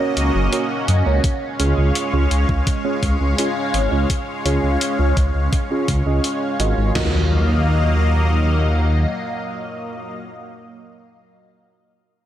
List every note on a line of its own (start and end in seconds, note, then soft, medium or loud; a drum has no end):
0.00 1.20 A#3 medium
0.00 0.15 C#4 medium
0.00 6.92 C#4 medium
0.00 0.15 F#4 medium
0.00 1.20 F#4 medium
0.00 0.15 A#4 medium
0.00 0.15 C#5 loud
0.00 1.21 D#5 medium
0.17 0.31 C#2 medium
0.17 closed hi-hat medium
0.35 0.49 F#1 medium
0.53 0.63 C#4 medium
0.53 0.63 F#4 medium
0.53 0.63 A#4 medium
0.53 0.63 C#5 loud
0.53 closed hi-hat medium
0.88 1.02 F#2 medium
0.88 closed hi-hat medium
1.06 1.20 C#2 medium
1.06 1.22 C#4 medium
1.06 1.22 F#4 medium
1.06 1.22 A#4 medium
1.06 1.22 C#5 loud
1.24 6.92 G#3 medium
1.24 6.92 C#5 medium
1.24 6.92 F5 medium
1.24 kick loud
1.24 closed hi-hat medium
1.60 1.74 C#2 medium
1.60 2.09 C#4 medium
1.60 2.09 F4 medium
1.60 2.09 G#4 medium
1.60 2.09 C#5 loud
1.60 closed hi-hat medium
1.78 1.92 C#2 medium
1.95 closed hi-hat medium
2.13 2.27 C#2 medium
2.13 2.23 C#4 medium
2.13 2.23 F4 medium
2.13 2.23 G#4 medium
2.13 2.23 C#5 loud
2.31 2.45 C#2 medium
2.31 closed hi-hat medium
2.49 2.63 C#2 medium
2.49 kick loud
2.67 kick loud
2.67 closed hi-hat medium
2.85 3.01 C#4 medium
2.85 3.01 F4 medium
2.85 3.01 G#4 medium
2.85 3.01 C#5 medium
3.03 3.17 C#2 medium
3.03 kick medium
3.03 closed hi-hat medium
3.20 3.35 C#2 medium
3.38 3.48 C#4 medium
3.38 3.48 F4 medium
3.38 3.48 G#4 medium
3.38 3.48 C#5 loud
3.38 closed hi-hat medium
3.74 3.88 G#1 medium
3.74 closed hi-hat medium
3.92 4.06 C#2 medium
3.92 4.08 C#4 medium
3.92 4.08 F4 medium
3.92 4.08 G#4 medium
3.92 4.08 C#5 loud
4.10 kick loud
4.10 closed hi-hat medium
4.45 4.60 C#2 medium
4.45 4.95 C#4 medium
4.45 4.95 F4 medium
4.45 4.95 G#4 medium
4.45 4.95 C#5 loud
4.45 closed hi-hat medium
4.63 4.77 C#2 medium
4.81 closed hi-hat medium
4.99 5.13 C#2 medium
4.99 5.09 C#4 medium
4.99 5.09 F4 medium
4.99 5.09 G#4 medium
4.99 5.09 C#5 loud
5.17 5.31 C#2 medium
5.17 kick loud
5.17 closed hi-hat medium
5.35 5.49 C#2 medium
5.53 kick loud
5.53 closed hi-hat medium
5.71 5.87 C#4 medium
5.71 5.87 F4 medium
5.71 5.87 G#4 medium
5.71 5.87 C#5 medium
5.88 6.02 C#2 medium
5.88 kick medium
5.88 closed hi-hat medium
6.06 6.20 C#2 medium
6.06 6.56 C#4 medium
6.06 6.56 F4 medium
6.06 6.56 G#4 medium
6.06 6.56 D#5 medium
6.24 closed hi-hat medium
6.60 6.74 G#1 medium
6.60 6.94 F4 medium
6.60 6.94 F#4 medium
6.60 6.94 A#4 medium
6.60 6.94 D#5 medium
6.60 closed hi-hat medium
6.77 6.92 G#1 medium
6.95 9.06 D#2 medium
6.95 10.12 F#3 medium
6.95 10.12 A#3 medium
6.95 10.12 F4 medium
6.95 10.12 F#4 medium
6.95 10.12 A#4 medium
6.95 10.12 D#5 medium
6.95 10.12 F5 medium
6.95 kick medium
6.95 snare medium
6.95 crash medium
6.95 impact medium